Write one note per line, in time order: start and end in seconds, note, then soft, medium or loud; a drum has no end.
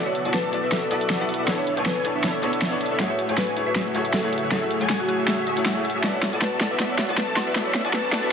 0.00 1.46 F#3 medium
0.00 0.22 B3 medium
0.00 0.23 B3 medium
0.00 2.97 D4 medium
0.00 0.22 E4 medium
0.00 7.51 E4 medium
0.00 0.23 F#4 medium
0.00 0.23 A4 medium
0.00 1.46 B4 medium
0.00 0.23 D5 medium
0.00 0.23 E5 medium
0.06 0.16 C#5 medium
0.15 closed hi-hat medium
0.24 0.33 B3 medium
0.24 0.61 B3 medium
0.24 0.33 E4 medium
0.24 0.33 F#4 medium
0.24 0.61 F#4 medium
0.24 0.61 A4 medium
0.24 0.33 A4 medium
0.24 0.61 D5 medium
0.24 0.34 D5 medium
0.24 0.61 A5 loud
0.24 closed hi-hat medium
0.34 0.45 B4 medium
0.34 snare soft
0.34 closed hi-hat medium
0.52 0.88 B3 medium
0.52 0.88 E4 medium
0.52 0.89 F#4 medium
0.52 0.89 A4 medium
0.52 0.89 D5 medium
0.52 closed hi-hat medium
0.63 0.70 B3 medium
0.63 0.70 F#4 medium
0.63 0.70 A4 medium
0.63 0.70 B4 medium
0.63 0.70 D5 medium
0.63 0.70 E5 medium
0.71 0.89 B3 medium
0.71 0.89 F#4 medium
0.71 0.78 A4 medium
0.71 0.89 A4 medium
0.71 0.89 D5 medium
0.71 0.89 E5 medium
0.71 snare soft
0.71 closed hi-hat medium
0.82 0.88 A4 medium
0.90 1.17 B3 medium
0.90 1.37 B3 medium
0.90 1.17 E4 medium
0.90 1.18 F#4 medium
0.90 1.37 F#4 medium
0.90 1.37 A4 medium
0.90 1.18 A4 medium
0.90 1.37 D5 medium
0.90 1.18 D5 loud
0.90 1.37 E5 loud
0.90 closed hi-hat medium
1.01 closed hi-hat medium
1.10 snare soft
1.10 closed hi-hat medium
1.19 1.45 B3 medium
1.19 1.45 E4 medium
1.19 1.46 F#4 medium
1.19 1.46 A4 medium
1.19 1.46 D5 loud
1.29 closed hi-hat soft
1.34 closed hi-hat medium
1.39 1.46 B3 medium
1.39 1.46 F#4 medium
1.39 1.46 A4 medium
1.39 1.46 D5 medium
1.39 1.46 E5 loud
1.47 6.00 A3 medium
1.47 1.74 B3 medium
1.47 1.75 B3 medium
1.47 1.74 D4 medium
1.47 1.75 D4 medium
1.47 1.75 E4 medium
1.47 1.75 A4 medium
1.47 2.98 B4 medium
1.47 1.75 C#5 medium
1.47 2.98 C#5 medium
1.47 1.75 C#5 loud
1.47 1.75 E5 medium
1.47 snare soft
1.47 closed hi-hat medium
1.58 1.68 C#5 medium
1.67 closed hi-hat medium
1.76 1.84 B3 medium
1.76 2.13 B3 medium
1.76 1.85 D4 medium
1.76 2.13 D4 medium
1.76 1.85 E4 medium
1.76 2.13 A4 medium
1.76 1.85 A4 medium
1.76 2.13 C#5 medium
1.76 1.85 C#5 loud
1.76 2.13 G#5 medium
1.76 closed hi-hat medium
1.86 1.92 B4 medium
1.86 snare medium
1.86 closed hi-hat medium
1.96 2.02 B4 medium
2.04 2.40 B3 medium
2.04 2.40 D4 medium
2.04 2.41 E4 medium
2.04 2.41 A4 medium
2.04 2.41 C#5 loud
2.04 closed hi-hat medium
2.15 2.22 B3 medium
2.15 2.22 D4 medium
2.15 2.22 A4 medium
2.15 2.22 C#5 medium
2.15 2.22 E5 medium
2.24 2.41 B3 medium
2.24 2.41 D4 medium
2.24 2.41 A4 medium
2.24 2.41 C#5 medium
2.24 2.41 E5 loud
2.24 snare medium
2.24 closed hi-hat medium
2.42 2.69 B3 medium
2.42 2.89 B3 medium
2.42 2.69 D4 medium
2.42 2.89 D4 medium
2.42 2.69 E4 medium
2.42 2.89 A4 medium
2.42 2.70 A4 medium
2.42 2.89 C#5 medium
2.42 2.70 C#5 loud
2.42 2.89 E5 loud
2.42 closed hi-hat medium
2.53 closed hi-hat medium
2.62 snare medium
2.62 closed hi-hat medium
2.71 2.97 B3 medium
2.71 2.97 D4 medium
2.71 2.97 E4 medium
2.71 2.98 A4 medium
2.71 2.98 C#5 loud
2.81 closed hi-hat soft
2.86 closed hi-hat medium
2.91 2.98 B3 medium
2.91 2.98 D4 medium
2.91 2.98 A4 medium
2.91 2.98 C#5 medium
2.91 2.98 E5 medium
2.99 6.00 C#3 medium
2.99 7.51 F#3 medium
2.99 3.26 A3 medium
2.99 3.26 E4 medium
2.99 3.26 F#4 medium
2.99 6.00 G#4 medium
2.99 3.27 G#4 medium
2.99 3.27 C#5 loud
2.99 3.26 E5 loud
2.99 snare medium
2.99 closed hi-hat medium
3.10 3.20 C#5 medium
3.19 closed hi-hat medium
3.28 3.36 A3 medium
3.28 3.64 A3 medium
3.28 3.37 E4 medium
3.28 3.37 F#4 medium
3.28 3.64 F#4 medium
3.28 3.64 G#4 medium
3.28 3.37 G#4 medium
3.28 3.64 C#5 medium
3.28 3.37 C#5 medium
3.28 3.64 G#5 loud
3.28 closed hi-hat medium
3.38 3.49 B4 medium
3.38 snare medium
3.38 closed hi-hat medium
3.56 3.92 A3 medium
3.56 3.92 E4 medium
3.56 3.92 F#4 medium
3.56 3.93 G#4 medium
3.56 3.93 C#5 loud
3.56 closed hi-hat medium
3.66 3.73 A3 medium
3.66 3.73 F#4 medium
3.66 3.73 G#4 medium
3.66 3.74 B4 medium
3.66 3.73 C#5 medium
3.66 3.73 E5 medium
3.76 3.93 A3 medium
3.76 3.93 F#4 medium
3.76 3.93 G#4 medium
3.76 3.93 C#5 medium
3.76 3.93 E5 medium
3.76 snare medium
3.76 closed hi-hat medium
3.94 4.21 A3 medium
3.94 4.40 A3 medium
3.94 4.21 E4 medium
3.94 4.40 F#4 medium
3.94 4.21 F#4 medium
3.94 4.40 G#4 medium
3.94 4.22 G#4 medium
3.94 4.40 C#5 medium
3.94 4.22 C#5 loud
3.94 4.40 E5 loud
3.94 closed hi-hat medium
4.05 closed hi-hat medium
4.14 4.25 A4 medium
4.14 snare medium
4.14 closed hi-hat medium
4.23 4.49 A3 loud
4.23 4.49 E4 medium
4.23 4.50 F#4 medium
4.23 4.50 G#4 medium
4.23 4.50 C#5 loud
4.33 closed hi-hat soft
4.38 closed hi-hat medium
4.43 4.50 A3 medium
4.43 4.50 F#4 medium
4.43 4.50 G#4 medium
4.43 4.50 C#5 medium
4.43 4.50 E5 medium
4.51 4.78 A3 medium
4.51 4.78 E4 medium
4.51 4.78 F#4 medium
4.51 4.78 G#4 medium
4.51 4.79 G#4 medium
4.51 4.63 A4 medium
4.51 4.78 C#5 medium
4.51 4.79 C#5 loud
4.51 4.78 E5 loud
4.51 snare medium
4.51 closed hi-hat medium
4.71 closed hi-hat medium
4.80 4.88 A3 medium
4.80 5.16 A3 medium
4.80 4.89 E4 medium
4.80 5.16 F#4 medium
4.80 4.89 F#4 medium
4.80 5.16 G#4 medium
4.80 4.89 G#4 medium
4.80 5.16 C#5 medium
4.80 4.89 C#5 medium
4.80 5.16 G#5 loud
4.80 closed hi-hat medium
4.90 snare medium
4.90 closed hi-hat medium
5.00 5.07 F#4 medium
5.08 5.44 A3 medium
5.08 5.44 E4 medium
5.08 5.47 F#4 medium
5.08 5.44 F#4 medium
5.08 5.45 G#4 medium
5.08 5.45 C#5 loud
5.08 closed hi-hat medium
5.19 5.25 A3 medium
5.19 5.25 F#4 medium
5.19 5.25 G#4 medium
5.19 5.25 C#5 medium
5.19 5.25 E5 loud
5.28 5.44 A3 medium
5.28 5.44 F#4 medium
5.28 5.44 G#4 medium
5.28 5.44 C#5 medium
5.28 5.44 E5 medium
5.28 snare medium
5.28 closed hi-hat medium
5.46 5.92 A3 medium
5.46 5.92 F#4 medium
5.46 5.92 G#4 medium
5.46 5.92 C#5 medium
5.46 5.92 E5 medium
5.46 closed hi-hat medium
5.56 5.73 A3 medium
5.56 5.73 E4 medium
5.56 5.73 F#4 medium
5.56 5.74 G#4 medium
5.56 5.74 C#5 medium
5.56 closed hi-hat medium
5.66 snare medium
5.66 closed hi-hat medium
5.75 6.01 A3 medium
5.75 6.01 E4 medium
5.75 6.01 F#4 medium
5.75 6.02 G#4 medium
5.75 6.02 C#5 medium
5.85 closed hi-hat soft
5.90 closed hi-hat medium
5.95 6.02 A3 medium
5.95 6.02 F#4 medium
5.95 6.02 G#4 medium
5.95 6.02 C#5 medium
5.95 6.02 E5 loud
6.03 6.30 B3 medium
6.03 8.33 D4 medium
6.03 6.30 E4 medium
6.03 6.30 F#4 medium
6.03 6.30 A4 medium
6.03 6.31 A4 medium
6.03 8.33 B4 medium
6.03 6.30 D5 medium
6.03 6.31 D5 medium
6.03 6.30 E5 medium
6.03 snare medium
6.03 closed hi-hat medium
6.03 riser medium
6.14 6.24 C#5 medium
6.23 snare medium
6.23 closed hi-hat medium
6.32 6.40 B3 medium
6.32 6.68 B3 medium
6.32 6.41 E4 medium
6.32 6.68 F#4 medium
6.32 6.41 F#4 medium
6.32 6.68 A4 medium
6.32 6.41 A4 medium
6.32 6.68 D5 medium
6.32 6.41 D5 medium
6.32 6.68 A5 medium
6.32 closed hi-hat medium
6.42 6.53 B4 medium
6.42 snare medium
6.42 closed hi-hat medium
6.60 6.77 B3 medium
6.60 6.78 E4 medium
6.60 6.78 F#4 medium
6.60 6.78 A4 medium
6.60 6.79 D5 medium
6.60 snare medium
6.60 closed hi-hat medium
6.71 6.77 B3 medium
6.71 6.77 F#4 medium
6.71 6.77 A4 medium
6.71 6.78 B4 medium
6.71 6.77 D5 medium
6.71 6.77 E5 medium
6.79 7.06 B3 medium
6.79 7.06 E4 medium
6.79 7.06 F#4 medium
6.79 7.06 A4 medium
6.79 7.07 A4 medium
6.79 7.06 D5 medium
6.79 7.07 D5 medium
6.79 7.06 E5 medium
6.79 snare medium
6.79 closed hi-hat medium
6.90 7.00 C#5 medium
6.99 snare medium
6.99 closed hi-hat medium
7.08 7.16 B3 medium
7.08 7.44 B3 medium
7.08 7.16 E4 medium
7.08 7.17 F#4 medium
7.08 7.44 F#4 medium
7.08 7.44 A4 medium
7.08 7.17 A4 medium
7.08 7.44 D5 medium
7.08 7.17 D5 medium
7.08 7.44 A5 loud
7.08 closed hi-hat medium
7.17 7.29 B4 medium
7.17 snare medium
7.17 closed hi-hat medium
7.36 7.53 B3 medium
7.36 7.54 E4 medium
7.36 7.54 F#4 medium
7.36 7.54 A4 medium
7.36 7.55 D5 medium
7.36 snare medium
7.36 closed hi-hat soft
7.36 high woodblock medium
7.42 closed hi-hat medium
7.47 7.53 B3 medium
7.47 7.53 F#4 medium
7.47 7.53 A4 medium
7.47 7.54 B4 medium
7.47 7.53 D5 medium
7.47 7.53 E5 medium
7.55 8.33 A3 medium
7.55 7.82 B3 medium
7.55 7.82 E4 medium
7.55 8.33 E4 medium
7.55 7.82 F#4 medium
7.55 7.82 A4 medium
7.55 7.82 D5 medium
7.55 7.83 D5 loud
7.55 7.82 E5 medium
7.55 8.33 C#6 medium
7.55 snare medium
7.55 closed hi-hat medium
7.66 7.76 C#5 medium
7.75 snare medium
7.75 closed hi-hat medium
7.84 7.92 B3 medium
7.84 8.20 B3 medium
7.84 7.92 E4 medium
7.84 8.20 F#4 medium
7.84 7.93 F#4 medium
7.84 8.20 A4 medium
7.84 7.93 A4 medium
7.84 8.20 D5 medium
7.84 7.93 D5 medium
7.84 8.20 A5 loud
7.84 closed hi-hat medium
7.93 8.05 B4 medium
7.93 snare medium
7.93 closed hi-hat medium
8.11 8.29 B3 medium
8.11 8.29 E4 medium
8.11 8.30 F#4 medium
8.11 8.30 A4 medium
8.11 8.30 D5 medium
8.11 snare medium
8.11 closed hi-hat medium
8.23 8.29 B3 medium
8.23 8.29 F#4 medium
8.23 8.29 A4 medium
8.23 8.30 B4 medium
8.23 8.29 D5 medium
8.23 8.29 E5 medium